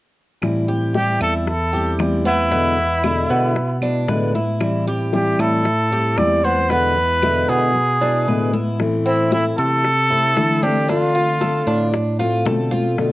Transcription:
0.41 A2 E3 G3 C4 E4, high bongo, high conga, claves
0.68 G3 C4 E4 G4, high conga
0.94 E3 G3 C4 E4 G4, high bongo, high conga
1.20 E2 E4 A4, high conga, claves
1.47 A4, muted steel-string acoustic guitar stroke, high bongo, high conga
1.73 G3 C4 E4 G4, high conga
1.99 E2 E3 G3 C4 E4, high bongo, low bongo, high conga, claves
2.25 G3 B3 C4 E4, high conga
2.51 B2 D3 G#3 B3 E4, high bongo, high conga
2.78 G#3, high bongo, high conga
3.04 B2 D3 G#3 B3 E4, high bongo, high conga, claves
3.30 B2 B3, high bongo, high conga
3.56 muted steel-string acoustic guitar stroke, high bongo, high conga
3.82 B2 G#3 B3 D4 E4, high bongo, high conga, claves
4.08 A2 B2 D3 G#3 B3 E4 B4, high bongo, low bongo, high conga
4.34 G#3 B3 E4, high conga
4.60 E3 G3 C4 E4, high bongo, high conga, claves
4.86 G3 C4 E4 G4, high conga
5.12 E3 G3 C4 E4 G4, high bongo, high conga
5.39 A2 E4 A4, high conga, claves
5.65 muted steel-string acoustic guitar stroke, high bongo, high conga
5.91 G3 C4 E4 G4, high conga
6.17 E2 E3 G3 C4 E4 D5, high bongo, low bongo, high conga, claves
6.44 G3 B3 C4 E4 C5, high conga
6.70 B2 D3 G#3 B3 E4 B4, high bongo, high conga
6.95 G#3 B3 E4, high bongo, high conga
7.22 B2 D3 G#3 B3 E4, high bongo, high conga, claves
7.49 B2 B3 G#4, high bongo, high conga
7.74 muted steel-string acoustic guitar stroke, high conga
8.01 B2 G#3 B3 D4 E4, high conga
8.27 A2 B2 D3 G#3 B3 E4 B4, high conga
8.53 G#3 B3 E4, high conga
8.79 E3 A3 C4 E4, high bongo, high conga
9.06 C4 E4, high conga
9.31 E3 A3 C4 E4, high bongo, high conga
9.58 C3 A4, high conga
9.84 muted steel-string acoustic guitar stroke, high bongo, high conga
10.10 A3 C4 E4, high conga
10.36 D3 E3 A3 C4 E4, high bongo, low bongo, high conga
10.63 A3 C4 D4 E4 G4, high conga
10.88 D3 A3 C4 D4 F4, high bongo, high conga
11.15 F4, high bongo, high conga
11.41 D3 A3 C4 F4 A4, high bongo, high conga
11.67 A2 D4, high bongo, high conga
11.93 muted steel-string acoustic guitar stroke, high bongo, high conga
12.19 A3 C4 F4, high bongo, high conga
12.45 B2 D3 A3 C4 F4 A4, high bongo, low bongo, high conga
12.71 A3 C4 F4, high conga
12.97 B2 D3 A3 B3 F4, high bongo, high conga

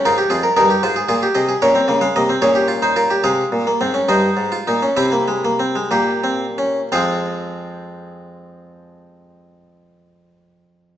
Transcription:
0.06 G#2 D#4 F4 A#4
0.18 G4
0.30 F2 F4 G#4
0.44 A#4
0.57 G2 D#4 G#4 A#4
0.70 G4
0.83 G#2 F4 C5
0.96 G#4
1.08 A#2 F4 G#4
1.22 G4
1.34 C3 G#4 D#5
1.48 G#4
1.62 A#2 C#4 A#4 C#5
1.75 C4
1.88 C#3 A#3
2.01 G#3 F5
2.16 C3 A#3 D#5
2.29 C4
2.42 A#2 C#4 G#4 C#5
2.55 G4
2.68 F4
2.82 D#4 C5
2.96 F4 A#4
3.10 G4
3.24 C3 G#3 G#4 F5
3.52 A#2
3.67 A#3
3.81 G#2 C4
3.94 C#4
4.09 G2 D#4 C5 D#5
4.37 G#2
4.52 F4
4.67 A#2 D#4
4.82 C#4
4.97 C3 C4 E4 E5
5.12 A#3
5.28 G#3
5.45 A#3
5.60 C4
5.76 G#3
5.91 A#2 A#3 G4
6.24 C4
6.58 C#4
6.92 F2 F3 G#3 C4 G#4 F5

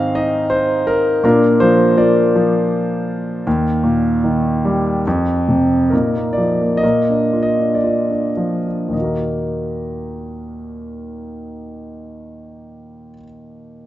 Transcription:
Already playing: G#2 D#3 C4 G#4 C5 D#5 F5
0.15 D#4 D#5
0.50 C5
0.87 A#4
1.24 A#2 D4 F4 A#4
1.60 F3 C5
1.97 A#3 F4 A#4 D5
2.35 F3
3.47 D#2
3.84 A#2
4.24 D#3
4.65 G3
5.07 F2
5.48 C3
5.90 A#2 D#4 A#4
6.16 A#3
6.33 D5
6.38 F3
6.61 A#3
6.77 D#5
6.83 A#2 A#4
7.10 D4
7.33 F4
7.42 D#5
7.59 D4
7.75 D5
7.84 F4
8.10 D4
8.37 F3
8.66 D4
8.88 D#2 A#2
8.93 D#3 D#5
8.98 A#3 F#4
9.04 A#4

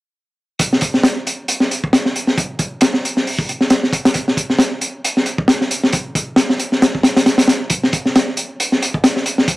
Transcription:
0.59 kick, closed hi-hat
0.73 snare
0.81 kick, closed hi-hat
0.94 snare
1.03 snare, closed hi-hat
1.27 closed hi-hat
1.48 closed hi-hat
1.60 snare
1.71 closed hi-hat
1.84 kick
1.93 snare, closed hi-hat
2.05 snare
2.16 closed hi-hat
2.27 snare
2.38 kick, closed hi-hat
2.59 kick, closed hi-hat
2.81 snare, closed hi-hat
2.94 snare
3.05 closed hi-hat
3.17 snare
3.27 open hi-hat
3.39 kick
3.49 closed hi-hat
3.61 snare
3.70 snare, closed hi-hat
3.83 snare
3.93 kick, closed hi-hat
4.05 snare, closed hi-hat
4.14 kick, closed hi-hat
4.28 snare
4.37 kick, closed hi-hat
4.50 snare
4.59 snare, closed hi-hat
4.81 closed hi-hat
5.05 closed hi-hat
5.17 snare
5.26 closed hi-hat
5.38 kick
5.48 snare, closed hi-hat
5.61 snare
5.71 closed hi-hat
5.83 snare
5.92 kick, closed hi-hat
6.15 kick, closed hi-hat
6.36 snare, closed hi-hat
6.50 snare
6.60 closed hi-hat
6.72 snare
6.82 snare, closed hi-hat
6.95 kick
7.03 snare, closed hi-hat
7.17 snare, closed hi-hat
7.26 snare, closed hi-hat
7.38 snare, closed hi-hat
7.48 snare, closed hi-hat
7.70 kick, closed hi-hat
7.83 snare
7.93 kick, closed hi-hat
8.06 snare
8.16 snare, closed hi-hat
8.37 closed hi-hat
8.60 closed hi-hat
8.72 snare
8.82 closed hi-hat
8.94 kick
9.04 snare, closed hi-hat
9.16 snare
9.26 closed hi-hat
9.38 snare
9.48 kick, closed hi-hat

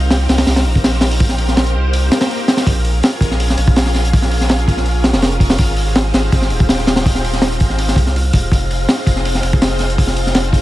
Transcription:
Already playing: C2 C4 D#4 F4 G4 A#4 C5 F5
0.10 snare, open hi-hat
0.29 C2, snare, open hi-hat
0.38 snare, open hi-hat
0.47 C2, snare, open hi-hat
0.56 snare, open hi-hat
0.65 A#1, open hi-hat
0.76 kick
0.84 snare, open hi-hat
0.93 snare
1.01 snare, open hi-hat
1.11 open hi-hat
1.20 C4 D#4 G4 A#4 C5, kick, open hi-hat
1.29 snare
1.38 open hi-hat
1.48 snare
1.57 snare, open hi-hat
1.66 closed hi-hat
1.75 C2
1.93 open hi-hat, swell
2.12 snare, open hi-hat
2.21 snare, open hi-hat
2.31 open hi-hat
2.48 snare, open hi-hat
2.57 snare, open hi-hat
2.66 A#1 C#4 F4 G#4 A#4 C#5 F5, kick, open hi-hat
2.85 open hi-hat
3.03 snare, open hi-hat
3.21 A#1, kick, open hi-hat
3.31 snare
3.40 open hi-hat
3.50 snare
3.57 A#1, open hi-hat
3.68 kick
3.76 snare, open hi-hat
3.86 snare
3.94 snare, open hi-hat
4.05 closed hi-hat
4.13 C#4 F4 G#4 A#4 C#5, kick, open hi-hat
4.22 snare
4.31 open hi-hat
4.41 snare
4.49 snare, open hi-hat
4.58 closed hi-hat
4.68 A#1, kick, open hi-hat
4.77 snare
4.86 open hi-hat
5.04 snare, open hi-hat
5.13 F1, snare, open hi-hat
5.22 snare, open hi-hat
5.32 closed hi-hat
5.40 kick, open hi-hat
5.50 snare, open hi-hat
5.58 G#1 C4 D#4 G4 G#4 C5, kick, open hi-hat
5.76 open hi-hat
5.95 snare, open hi-hat
6.14 G#1, snare, open hi-hat
6.32 G#1, kick, open hi-hat
6.42 snare
6.50 D#1, open hi-hat
6.60 kick
6.69 snare, open hi-hat
6.79 snare
6.87 snare, open hi-hat
6.96 snare, open hi-hat
7.05 C4 D#4 G4 G#4 C5, kick, open hi-hat
7.15 snare
7.24 open hi-hat
7.33 snare
7.42 snare, open hi-hat
7.52 closed hi-hat
7.60 G#1, kick, open hi-hat
7.70 snare
7.78 open hi-hat
7.88 snare
7.96 C2, kick, open hi-hat
8.07 snare
8.16 open hi-hat
8.33 D#1, kick, open hi-hat
8.51 F1 C4 D#4 F4 G#4 C5, kick, open hi-hat
8.71 open hi-hat
8.89 snare, open hi-hat
9.06 F1, kick, open hi-hat
9.16 snare
9.25 open hi-hat
9.35 snare
9.43 F1, open hi-hat
9.53 kick
9.62 snare, open hi-hat
9.70 snare
9.79 snare, open hi-hat
9.90 closed hi-hat
9.98 C4 D#4 F4 G#4 C5, kick, open hi-hat
10.07 snare
10.16 open hi-hat
10.27 snare
10.35 snare, open hi-hat
10.44 closed hi-hat
10.53 F1, kick, open hi-hat

